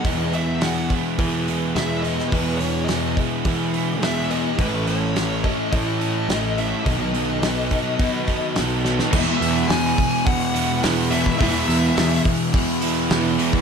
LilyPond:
<<
  \new Staff \with { instrumentName = "Lead electric guitar" } { \time 4/4 \key e \major \tempo 4 = 106 dis''8 e''8 fis''8 r4. e''8 dis''8 | b'8 cis''8 dis''8 r4. e''8 dis''8 | b'8 cis''4 dis''8 dis''4. e''8 | dis''2. r4 |
e''4 gis''4 fis''4 r8 e''8 | e''4. r2 r8 | }
  \new Staff \with { instrumentName = "Overdriven electric guitar" } { \time 4/4 \key e \major <e gis b e' gis'>8 <b e' gis'>8 <gis b e' gis'>8 <b e' gis'>8 <e gis b e' gis'>8 <b e' gis'>8 <gis b e' gis'>8 <b e' gis'>8 | <e gis b e' gis'>8 <b e' gis'>8 <gis b e' gis'>8 <b e' gis'>8 <e gis b e' gis'>8 <b e' gis'>8 <gis b e' gis'>8 <b e' gis'>8 | <a, e a cis' e' a'>8 <a cis' e' a'>8 <a cis' e' a'>8 <a cis' e' a'>8 <a, e a cis' e' a'>8 <a cis' e' a'>8 <a cis' e' a'>8 <a cis' e' a'>8 | <b, dis fis b dis' a'>8 <fis b dis' a'>8 <fis b dis' a'>8 <fis b dis' a'>8 <b, dis fis b dis' a'>8 <fis b dis' a'>8 <fis b dis' a'>8 <fis b dis' a'>8 |
<e gis b e'>2~ <e gis b e'>8 <e gis b e'>8 <e gis b e'>4 | <e gis b e'>2~ <e gis b e'>8 <e gis b e'>8 <e gis b e'>4 | }
  \new Staff \with { instrumentName = "Distorted electric guitar" } { \clef bass \time 4/4 \key e \major <e, b, e>8 <b, e>8 <e, b, e>4 <e, b, e>4 <e, b, e>4 | <e, b, e>8 <b, e>8 <e, b, e>4 <e, b, e>4 <e, b, e>4 | <a, e a>8 <e a>8 <a, e a>4 <a, e a>4 <a, e a>4 | <b, fis b>8 <fis b>8 <b, fis b>4 <b, fis b>4 <b, fis b>4 |
<e, b, e>4 <e, b, e>8 <b, e>8 <e, b, e>4 <e, b, e>8 <b, e>8 | <e, b, e>4 <e, b, e>8 <b, e>8 <e, b, e>4 <e, b, e>8 <b, e>8 | }
  \new Staff \with { instrumentName = "Overdriven electric guitar" } { \clef bass \time 4/4 \key e \major r1 | r1 | r1 | r1 |
<e, b, e>2.~ <e, b, e>8 <e, b, e>8 | <e, b, e>2.~ <e, b, e>8 <e, b, e>8 | }
  \new Staff \with { instrumentName = "Picked electric bass" } { \clef bass \time 4/4 \key e \major e,2 e4 e,4 | e,2 e4 e,4 | a,,2 a,4 a,,4 | b,,2 b,4 b,,4 |
e,8 e,8 e,8 r4. e,4 | e,8 e,8 e,8 r4. e,4 | }
  \new DrumStaff \with { instrumentName = "Drums" } \drummode { \time 4/4 <hho bd>8 hho8 <hho sn>8 <hho bd>8 <hho bd>8 hho8 <hho sn>8 hho16 sn16 | <hho bd>8 hho8 <hho sn>8 <hho bd>8 <hho bd>8 hho8 <hho sn>8 hho8 | <hho bd>8 hho8 <hho sn>8 <hho bd>8 <hho bd>8 hho8 <hho sn>8 hho8 | <hho bd>8 hho8 <hho sn>8 <hho bd>8 <hho bd>8 <hho bd>8 <hho sn>8 sn16 sn16 |
<cymc bd>8 hho8 <hho sn>8 <hho bd>8 <hho bd>8 hho8 <hho sn>8 hho16 bd16 | <hho bd>8 hho8 <hho sn>8 <hho bd>8 <hho bd>8 hho8 <hho sn>8 hho16 bd16 | }
>>